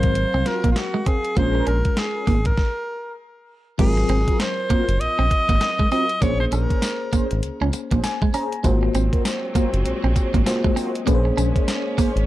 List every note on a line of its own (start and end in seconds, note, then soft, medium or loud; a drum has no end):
0.00 0.25 G#1 loud
0.00 1.33 F#3 medium
0.00 1.34 C4 medium
0.00 1.35 A#4 medium
0.00 0.49 C5 loud
0.00 1.34 F5 medium
0.00 kick loud
0.00 closed hi-hat medium
0.15 closed hi-hat medium
0.34 0.44 C2 medium
0.34 0.41 C4 medium
0.46 0.61 C4 medium
0.46 0.61 F4 medium
0.46 0.61 F#4 medium
0.46 0.61 A#4 medium
0.46 0.71 A#4 loud
0.46 muted clean electric guitar stroke soft
0.46 snare medium
0.46 closed hi-hat medium
0.64 0.74 A#1 medium
0.64 0.71 A#3 medium
0.64 kick loud
0.64 closed hi-hat medium
0.72 0.79 F4 medium
0.76 1.09 F#4 medium
0.76 muted clean electric guitar stroke soft
0.76 snare loud
0.76 clap medium
0.76 closed hi-hat medium
0.94 1.01 G#3 medium
1.06 1.17 C4 medium
1.06 1.39 G#4 medium
1.06 kick loud
1.06 closed hi-hat medium
1.25 closed hi-hat soft
1.36 1.61 A#1 loud
1.36 2.28 G#3 medium
1.36 1.47 A#3 medium
1.36 1.65 C#4 medium
1.36 2.28 C#4 medium
1.36 2.28 F4 medium
1.36 1.65 G#4 medium
1.36 1.65 A#4 loud
1.36 2.28 A#4 medium
1.36 1.67 C5 loud
1.36 kick loud
1.36 closed hi-hat medium
1.55 muted clean electric guitar stroke soft
1.67 1.82 A#1 loud
1.67 1.77 C#4 medium
1.67 2.00 A#4 medium
1.67 closed hi-hat medium
1.85 kick medium
1.85 closed hi-hat medium
1.97 2.46 G#4 loud
1.97 snare loud
1.97 clap medium
1.97 closed hi-hat medium
2.15 2.25 C#4 medium
2.15 2.25 G#4 medium
2.15 2.25 A#4 medium
2.27 2.52 G#1 medium
2.27 2.38 A#3 medium
2.27 kick medium
2.27 open hi-hat medium
2.45 3.15 A#4 medium
2.45 kick loud
2.45 closed hi-hat medium
2.57 kick loud
2.57 snare medium
3.78 4.04 G#1 loud
3.78 6.17 F#3 medium
3.78 3.89 G#3 medium
3.78 6.18 C4 medium
3.78 6.18 F4 medium
3.78 4.42 G#4 loud
3.78 6.18 A#4 medium
3.78 kick loud
3.78 closed hi-hat medium
3.78 crash loud
3.97 muted clean electric guitar stroke soft
4.09 4.24 G#1 medium
4.09 4.20 C4 medium
4.09 closed hi-hat medium
4.28 4.37 C4 medium
4.28 4.37 F4 medium
4.28 4.38 F#4 medium
4.28 4.38 A#4 medium
4.28 kick medium
4.28 closed hi-hat medium
4.40 5.02 C5 loud
4.40 snare loud
4.40 clap loud
4.40 closed hi-hat medium
4.70 4.78 F#1 soft
4.70 4.81 A#3 medium
4.70 4.85 C4 medium
4.70 4.85 F4 medium
4.70 4.85 F#4 medium
4.70 4.85 A#4 medium
4.70 kick loud
4.70 closed hi-hat medium
4.88 4.98 F#1 medium
4.88 closed hi-hat medium
5.00 5.08 A#1 medium
5.00 5.91 D#5 loud
5.00 closed hi-hat medium
5.19 5.29 A#1 medium
5.19 5.26 C4 medium
5.31 muted clean electric guitar stroke medium
5.31 kick medium
5.31 closed hi-hat medium
5.49 5.59 G#1 loud
5.49 5.56 A#3 medium
5.49 kick loud
5.49 closed hi-hat medium
5.61 muted clean electric guitar stroke soft
5.61 snare loud
5.61 clap medium
5.61 closed hi-hat medium
5.79 5.86 G#3 medium
5.79 kick loud
5.91 6.06 C4 medium
5.91 6.02 C4 medium
5.91 6.06 F4 medium
5.91 6.06 F#4 medium
5.91 6.06 A#4 medium
5.91 6.23 D#5 loud
5.91 open hi-hat medium
6.09 closed hi-hat medium
6.21 6.46 A#1 loud
6.21 8.60 A#3 medium
6.21 6.32 A#3 medium
6.21 8.60 C#4 medium
6.21 8.61 G#4 medium
6.21 8.61 C5 medium
6.21 6.40 C#5 loud
6.21 kick loud
6.21 closed hi-hat medium
6.21 tambourine medium
6.40 6.46 C5 medium
6.40 muted clean electric guitar stroke soft
6.52 6.67 A#1 medium
6.52 6.63 C#4 medium
6.52 7.39 A#4 medium
6.52 closed hi-hat medium
6.52 tambourine medium
6.70 6.80 C#4 medium
6.70 6.80 G#4 medium
6.70 6.80 C5 medium
6.70 kick medium
6.70 closed hi-hat medium
6.82 snare loud
6.82 clap medium
6.82 closed hi-hat medium
6.82 tambourine loud
7.13 7.20 G#1 soft
7.13 7.23 A#3 medium
7.13 7.27 C#4 medium
7.13 7.27 G#4 medium
7.13 7.27 C5 medium
7.13 kick loud
7.13 closed hi-hat medium
7.13 tambourine medium
7.31 7.41 G#1 medium
7.31 closed hi-hat medium
7.43 7.51 C#2 medium
7.43 closed hi-hat medium
7.61 7.71 C#2 medium
7.61 7.68 C#4 medium
7.73 muted clean electric guitar stroke soft
7.73 closed hi-hat medium
7.73 tambourine medium
7.91 8.01 A#1 loud
7.91 7.99 A#3 medium
7.91 8.01 C#4 medium
7.91 8.01 G#4 medium
7.91 8.01 C5 medium
7.91 kick medium
7.91 closed hi-hat medium
8.04 8.32 G#5 medium
8.04 muted clean electric guitar stroke soft
8.04 snare loud
8.04 clap medium
8.04 closed hi-hat medium
8.04 tambourine loud
8.22 8.29 G#3 medium
8.22 kick medium
8.33 8.48 C#4 medium
8.33 8.44 C#4 medium
8.33 8.48 G#4 medium
8.33 8.48 C5 medium
8.33 8.62 A#5 medium
8.33 open hi-hat medium
8.33 tambourine medium
8.52 closed hi-hat medium
8.63 8.89 G#1 loud
8.63 11.04 F#3 medium
8.63 12.26 G#3 medium
8.63 8.75 G#3 medium
8.63 10.42 A#3 medium
8.63 11.04 C4 medium
8.63 10.42 F4 medium
8.63 10.43 F#4 medium
8.63 10.43 C5 medium
8.63 kick loud
8.63 closed hi-hat medium
8.63 tambourine medium
8.83 muted clean electric guitar stroke medium
8.94 9.09 G#1 medium
8.94 9.05 C4 medium
8.94 closed hi-hat medium
8.94 tambourine medium
9.12 9.22 F4 medium
9.12 9.22 F#4 medium
9.12 9.22 A#4 medium
9.12 9.22 C5 medium
9.12 kick medium
9.12 closed hi-hat medium
9.25 snare loud
9.25 clap medium
9.25 closed hi-hat medium
9.25 tambourine loud
9.55 9.62 F#1 soft
9.55 9.66 A#3 medium
9.55 9.69 F4 medium
9.55 9.70 F#4 medium
9.55 9.70 A#4 medium
9.55 9.70 C5 medium
9.55 kick loud
9.55 closed hi-hat medium
9.55 tambourine medium
9.73 9.83 F#1 medium
9.73 closed hi-hat medium
9.86 9.93 A#1 medium
9.86 closed hi-hat medium
10.04 10.14 A#1 medium
10.04 10.11 C4 medium
10.16 muted clean electric guitar stroke soft
10.16 kick medium
10.16 closed hi-hat medium
10.16 tambourine medium
10.34 10.44 G#1 loud
10.34 10.41 A#3 medium
10.34 kick loud
10.34 closed hi-hat medium
10.46 11.04 A#3 medium
10.46 11.07 F4 medium
10.46 11.07 F#4 medium
10.46 11.07 C5 medium
10.46 muted clean electric guitar stroke soft
10.46 snare loud
10.46 clap medium
10.46 closed hi-hat medium
10.46 tambourine loud
10.64 10.71 G#3 medium
10.64 kick medium
10.76 10.87 C4 medium
10.76 10.91 F4 medium
10.76 10.91 F#4 medium
10.76 10.91 A#4 medium
10.76 10.91 C5 medium
10.76 open hi-hat medium
10.76 tambourine medium
10.95 closed hi-hat medium
11.06 11.32 A#1 loud
11.06 12.26 A#3 medium
11.06 11.17 A#3 loud
11.06 12.26 A#3 medium
11.06 12.26 C#4 medium
11.06 12.26 G#4 medium
11.06 11.15 B4 medium
11.06 kick loud
11.06 closed hi-hat medium
11.06 tambourine medium
11.15 12.26 C5 medium
11.25 muted clean electric guitar stroke soft
11.37 11.52 A#1 medium
11.37 11.48 C#4 medium
11.37 closed hi-hat medium
11.37 tambourine medium
11.55 11.65 C#4 medium
11.55 11.65 G#4 medium
11.55 11.65 C5 medium
11.55 kick medium
11.55 closed hi-hat medium
11.68 snare loud
11.68 clap medium
11.68 closed hi-hat medium
11.68 tambourine loud
11.98 12.05 G#1 soft
11.98 12.08 A#3 medium
11.98 12.12 C#4 medium
11.98 12.12 G#4 medium
11.98 12.12 C5 medium
11.98 kick loud
11.98 open hi-hat medium
11.98 tambourine medium
12.16 12.26 G#1 loud
12.16 closed hi-hat medium